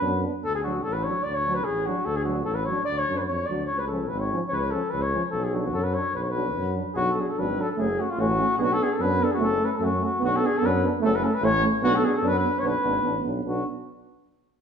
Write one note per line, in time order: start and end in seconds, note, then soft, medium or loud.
0.00 0.25 F#2 medium
0.00 0.10 D4 medium
0.00 0.23 B4 loud
0.05 0.13 B3 medium
0.22 0.34 B3 medium
0.22 0.31 D4 medium
0.44 0.86 D2 medium
0.44 0.55 A4 loud
0.55 0.59 G#4 medium
0.63 0.74 F#3 medium
0.63 0.71 D4 soft
0.63 0.84 F#4 medium
0.83 1.07 A1 medium
0.83 0.94 A4 loud
0.93 1.05 B4 medium
1.04 1.13 D4 medium
1.04 1.25 C#5 medium
1.08 1.16 F#3 medium
1.23 1.67 D2 medium
1.23 1.35 D5 medium
1.34 1.56 C#5 loud
1.45 1.55 F#3 medium
1.45 1.53 D4 medium
1.55 1.66 B4 medium
1.64 1.88 A1 medium
1.64 1.88 G#4 medium
1.86 1.95 F#3 medium
1.86 1.95 D4 medium
1.86 2.07 F#4 medium
2.05 2.48 D2 medium
2.05 2.17 A4 loud
2.16 2.24 G#4 medium
2.24 2.35 F#3 medium
2.24 2.44 F#4 medium
2.29 2.37 D4 medium
2.44 2.69 A1 medium
2.44 2.57 A4 medium
2.55 2.67 B4 medium
2.65 2.77 F#3 medium
2.65 2.84 C#5 medium
2.71 2.78 D4 medium
2.85 3.08 D2 medium
2.85 2.99 D5 loud
2.98 3.19 C#5 loud
3.09 3.27 F#2 medium
3.09 3.17 F#3 medium
3.09 3.18 D4 medium
3.17 3.23 B4 medium
3.22 3.26 C#5 medium
3.22 3.47 C#5 medium
3.29 3.47 F2 medium
3.46 3.68 D2 medium
3.46 3.66 D5 medium
3.50 3.58 F#3 medium
3.50 3.60 D4 soft
3.66 4.13 C#2 medium
3.66 3.80 C#5 medium
3.78 3.87 B4 medium
3.88 3.98 F3 medium
3.88 4.10 A4 medium
3.92 4.00 C#4 medium
4.08 4.34 G#1 loud
4.08 4.21 B4 medium
4.19 4.41 C#5 medium
4.32 4.41 F3 medium
4.32 4.40 C#4 medium
4.48 4.74 C#2 medium
4.48 4.55 C#5 loud
4.53 4.56 B4 loud
4.53 4.61 C#5 medium
4.59 4.72 B4 medium
4.71 4.81 F3 medium
4.71 4.81 C#4 medium
4.71 4.92 A4 medium
4.90 5.16 C#2 loud
4.90 5.04 B4 medium
5.02 5.24 C#5 medium
5.13 5.22 F3 medium
5.13 5.22 C#4 medium
5.31 5.75 B1 medium
5.31 5.45 A4 medium
5.44 5.56 G#4 medium
5.54 5.63 F#3 medium
5.54 5.62 D4 medium
5.54 5.62 F#4 medium
5.61 5.75 F#4 medium
5.61 5.64 G#4 medium
5.73 5.96 F#2 medium
5.73 5.85 A4 medium
5.83 5.96 B4 medium
5.94 6.03 F#3 medium
5.94 6.03 D4 soft
5.94 6.15 C#5 medium
6.15 6.58 B1 medium
6.15 6.24 B4 medium
6.22 6.31 C#5 medium
6.30 6.76 B4 loud
6.35 6.43 F#3 medium
6.35 6.44 D4 medium
6.56 6.79 F#2 medium
6.75 6.84 F#3 medium
6.75 6.84 D4 soft
6.94 7.18 B1 medium
6.94 7.05 F#3 medium
6.94 7.05 D4 medium
6.94 7.11 F#4 loud
6.94 6.98 G#4 medium
7.09 7.21 A4 medium
7.17 7.25 F#3 medium
7.17 7.25 D4 medium
7.17 7.31 G#4 medium
7.29 7.41 A4 medium
7.37 7.60 G#1 medium
7.37 7.45 F#3 medium
7.37 7.46 D4 medium
7.37 7.62 B4 medium
7.57 7.66 F#3 medium
7.57 7.66 D4 medium
7.57 7.70 A4 medium
7.71 7.80 A4 medium
7.77 8.00 F#1 medium
7.77 7.85 A3 medium
7.77 7.87 C#4 medium
7.77 8.01 G#4 loud
7.98 8.06 A3 medium
7.98 8.07 C#4 medium
7.98 8.12 F#4 medium
8.10 8.21 F4 medium
8.17 8.40 A1 loud
8.17 8.26 A3 medium
8.17 8.27 C#4 medium
8.17 8.57 F#4 loud
8.39 8.47 A3 medium
8.39 8.47 C#4 medium
8.57 8.80 B1 medium
8.57 8.67 B3 medium
8.57 8.67 D4 medium
8.57 8.64 G#4 medium
8.62 8.74 F#4 loud
8.73 8.84 A4 loud
8.81 8.89 B3 medium
8.81 8.89 D4 medium
8.81 8.94 G#4 medium
8.93 9.03 A4 medium
9.00 9.22 F#2 loud
9.00 9.08 B3 medium
9.00 9.10 D4 medium
9.00 9.25 B4 loud
9.21 9.29 B3 medium
9.21 9.30 D4 medium
9.21 9.33 A4 medium
9.31 9.45 F#4 medium
9.31 9.35 G#4 medium
9.38 9.62 F#1 medium
9.38 9.47 A3 medium
9.38 9.49 C#4 medium
9.43 9.66 A4 loud
9.58 9.66 A3 medium
9.63 9.70 C#4 medium
9.63 9.72 B4 medium
9.72 9.85 A4 medium
9.72 9.77 B4 medium
9.80 10.02 F#2 medium
9.80 9.89 A3 medium
9.84 9.91 C#4 medium
9.84 10.02 F#4 medium
10.00 10.09 A3 medium
10.00 10.09 C#4 medium
10.05 10.22 F#4 medium
10.19 10.44 B1 medium
10.19 10.28 B3 medium
10.24 10.32 D4 medium
10.24 10.37 F#4 loud
10.36 10.47 A4 loud
10.41 10.49 B3 medium
10.41 10.51 D4 medium
10.46 10.59 G#4 loud
10.57 10.68 B3 medium
10.57 10.67 A4 loud
10.63 10.85 F#2 loud
10.63 10.72 D4 medium
10.63 10.84 B4 loud
10.83 10.91 B3 medium
10.83 10.92 D4 medium
11.01 11.25 F#1 medium
11.01 11.09 A3 medium
11.01 11.12 C#4 medium
11.01 11.17 A4 loud
11.16 11.26 B4 medium
11.22 11.31 A3 medium
11.22 11.30 C#4 medium
11.22 11.36 A4 medium
11.34 11.46 B4 loud
11.42 11.64 A1 loud
11.42 11.50 A3 medium
11.42 11.50 C#4 medium
11.42 11.63 C#5 loud
11.63 11.71 A3 medium
11.63 11.72 C#4 medium
11.82 12.05 B1 medium
11.82 11.91 B3 loud
11.82 11.91 D4 medium
11.82 11.97 F#4 loud
11.96 12.06 A4 loud
12.03 12.11 B3 medium
12.03 12.12 D4 medium
12.03 12.15 G#4 medium
12.17 12.29 A4 medium
12.22 12.44 F#2 medium
12.22 12.31 B3 medium
12.22 12.30 D4 medium
12.28 12.36 B4 loud
12.39 12.61 B4 medium
12.43 12.51 B3 medium
12.43 12.52 D4 medium
12.59 12.74 B1 medium
12.59 12.71 B3 medium
12.59 12.68 C#5 loud
12.64 12.72 D4 medium
12.64 13.25 B4 loud
12.83 13.02 G#1 medium
12.83 12.91 B3 medium
12.83 12.92 D4 medium
13.02 13.21 A1 medium
13.02 13.10 B3 medium
13.02 13.12 D4 medium
13.23 13.42 B1 medium
13.23 13.31 B3 medium
13.23 13.33 D4 soft
13.43 13.62 B1 medium
13.43 13.62 B3 medium
13.43 13.62 D4 medium
13.48 13.65 F#4 medium